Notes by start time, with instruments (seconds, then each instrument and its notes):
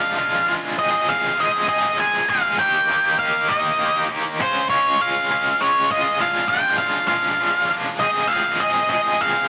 Already playing: overdriven electric guitar F3 G#3 D4 F4, lead electric guitar F5
0.17 overdriven electric guitar F3 G#3 D4 F4
0.47 overdriven electric guitar F3 G#3 D4 F4
0.78 overdriven electric guitar F3 G#3 C4 G#4, lead electric guitar D#5
1.08 overdriven electric guitar F3 G#3 C4 G#4, lead electric guitar F5
1.38 overdriven electric guitar F3 G#3 C4 G#4, lead electric guitar D#5
1.68 overdriven electric guitar F3 G#3 C4 G#4, lead electric guitar D#5
1.98 overdriven electric guitar F3 G#3 C4 G#4, lead electric guitar G#5
2.28 overdriven electric guitar F3 G#3 C4 G#4, lead electric guitar F5
2.59 overdriven electric guitar D#3 A#3 D#4 G4, lead electric guitar G5
2.89 overdriven electric guitar D#3 A#3 D#4 G4
3.19 overdriven electric guitar D#3 A#3 D#4 G4, lead electric guitar F5
3.48 overdriven electric guitar D#3 A#3 D#4 G4, lead electric guitar D#5
3.79 overdriven electric guitar D#3 A#3 D#4 G4
4.09 overdriven electric guitar D#3 A#3 D#4 G4
4.40 overdriven electric guitar G#3 C#4 F4, lead electric guitar C5
4.70 overdriven electric guitar G#3 C#4 F4, lead electric guitar C#5
5.00 overdriven electric guitar G#3 C#4 F4, lead electric guitar F5
5.31 overdriven electric guitar G#3 C#4 F4
5.61 overdriven electric guitar G#3 C#4 F4, lead electric guitar C#5
5.91 overdriven electric guitar G#3 C#4 F4, lead electric guitar D#5
6.20 overdriven electric guitar F3 G#3 D4 F4, lead electric guitar F5
6.49 overdriven electric guitar F3 G#3 D4 F4, lead electric guitar G5
6.78 overdriven electric guitar F3 G#3 D4 F4, lead electric guitar F5
7.08 overdriven electric guitar F3 G#3 D4 F4, lead electric guitar F5
7.39 overdriven electric guitar F3 G#3 D4 F4
7.70 overdriven electric guitar F3 G#3 D4 F4
8.00 overdriven electric guitar F3 G#3 C4 G#4, lead electric guitar D#5
8.28 overdriven electric guitar F3 G#3 C4, lead electric guitar F5
8.32 overdriven electric guitar G#4
8.60 overdriven electric guitar F3 G#3 C4 G#4, lead electric guitar D#5
8.90 overdriven electric guitar F3 G#3 C4 G#4, lead electric guitar D#5
9.21 overdriven electric guitar F3 G#3 C4 G#4, lead electric guitar F5